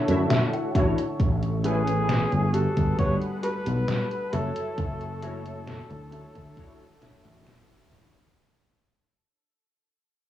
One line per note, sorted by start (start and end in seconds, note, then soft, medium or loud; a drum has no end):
0.00 1.18 D3 medium
0.00 1.18 E4 medium
0.00 1.18 F#4 medium
0.00 0.74 A4 loud
0.00 2.50 C#5 medium
0.08 0.25 F#2 medium
0.08 0.69 A3 medium
0.08 0.70 D4 medium
0.08 0.70 E4 medium
0.08 0.70 F#4 medium
0.08 0.70 E5 loud
0.08 closed hi-hat soft
0.30 0.52 E5 medium
0.30 snare loud
0.30 closed hi-hat medium
0.53 0.74 F#5 medium
0.53 closed hi-hat soft
0.75 0.92 A1 loud
0.75 1.01 A3 medium
0.75 0.98 D4 medium
0.75 1.01 D4 medium
0.75 0.98 E4 medium
0.75 1.01 E4 medium
0.75 0.98 F#4 medium
0.75 1.01 F#4 medium
0.75 0.98 C#5 loud
0.75 1.02 C#5 loud
0.75 1.17 A5 medium
0.75 kick loud
0.75 closed hi-hat medium
0.98 closed hi-hat soft
1.19 2.23 A1 loud
1.19 2.53 A3 medium
1.19 kick loud
1.19 closed hi-hat medium
1.43 closed hi-hat soft
1.64 2.51 A3 medium
1.64 1.87 C#4 medium
1.64 2.51 C#4 medium
1.64 2.52 E4 medium
1.64 2.55 G#4 loud
1.64 1.88 G#4 medium
1.64 1.88 A4 medium
1.64 2.52 B4 loud
1.64 1.88 B4 loud
1.64 2.52 G#5 medium
1.64 closed hi-hat medium
1.88 closed hi-hat medium
2.09 snare loud
2.09 closed hi-hat medium
2.32 2.65 G1 loud
2.32 closed hi-hat soft
2.53 4.31 G3 medium
2.53 3.26 F#4 medium
2.53 3.26 G4 medium
2.53 2.98 A4 loud
2.53 6.09 A4 medium
2.53 3.27 A4 medium
2.53 4.31 B4 loud
2.53 3.27 B4 loud
2.53 4.31 F#5 medium
2.53 closed hi-hat medium
2.77 2.93 G1 loud
2.77 kick medium
2.77 closed hi-hat medium
2.98 3.16 G1 loud
2.98 4.31 G3 medium
2.98 4.30 A3 medium
2.98 4.30 D4 medium
2.98 4.31 B4 medium
2.98 3.15 C#5 loud
2.98 4.31 F#5 medium
2.98 kick loud
2.98 closed hi-hat medium
3.22 closed hi-hat soft
3.43 3.66 F#4 medium
3.43 3.66 G4 medium
3.43 3.67 A4 medium
3.43 4.34 B4 loud
3.43 3.67 B4 loud
3.43 closed hi-hat medium
3.66 3.83 B1 medium
3.66 closed hi-hat medium
3.88 snare loud
3.88 closed hi-hat medium
4.11 closed hi-hat soft
4.33 4.50 F#1 loud
4.33 6.10 F#3 medium
4.33 5.05 E4 medium
4.33 6.10 E4 medium
4.33 5.05 F#4 medium
4.33 7.91 A4 loud
4.33 5.05 A4 medium
4.33 8.32 C#5 medium
4.33 5.06 C#5 loud
4.33 closed hi-hat medium
4.56 closed hi-hat medium
4.78 5.81 F#1 loud
4.78 kick loud
4.78 closed hi-hat medium
5.01 closed hi-hat soft
5.22 6.09 A3 medium
5.22 6.10 C#4 medium
5.22 5.45 E4 medium
5.22 6.10 E4 medium
5.22 5.46 F#4 medium
5.22 6.10 F#4 medium
5.22 5.46 A4 medium
5.22 6.10 C#5 medium
5.22 5.46 C#5 loud
5.22 closed hi-hat loud
5.45 closed hi-hat medium
5.67 snare loud
5.67 closed hi-hat medium
5.90 6.23 D2 loud
5.90 closed hi-hat soft
6.11 8.34 D3 medium
6.11 6.84 D4 medium
6.11 6.84 E4 medium
6.11 8.34 E4 medium
6.11 8.34 F#4 medium
6.11 6.84 F#4 medium
6.11 6.85 C#5 loud
6.11 closed hi-hat medium
6.35 6.51 D2 loud
6.35 kick medium
6.35 closed hi-hat medium
6.57 6.83 A3 loud
6.57 6.83 D4 medium
6.57 6.83 E4 medium
6.57 6.83 F#4 medium
6.57 6.83 C#5 loud
6.57 kick loud
6.57 closed hi-hat medium
6.80 closed hi-hat soft
7.01 7.24 D4 medium
7.01 7.25 E4 medium
7.01 7.25 F#4 medium
7.01 7.25 C#5 loud
7.01 snare medium
7.01 closed hi-hat loud
7.24 7.41 A1 medium
7.24 7.86 A3 medium
7.24 7.86 D4 medium
7.24 7.86 E4 medium
7.24 7.86 F#4 medium
7.24 7.87 E5 loud
7.24 closed hi-hat medium
7.46 snare loud
7.46 closed hi-hat medium
7.70 closed hi-hat soft
7.91 8.08 A1 medium
7.91 8.17 A3 medium
7.91 8.17 D4 medium
7.91 8.14 D4 medium
7.91 8.17 E4 medium
7.91 8.14 E4 medium
7.91 8.17 F#4 medium
7.91 8.15 F#4 medium
7.91 8.18 C#5 loud
7.91 8.15 C#5 loud
7.91 kick loud
7.91 closed hi-hat medium
8.14 closed hi-hat medium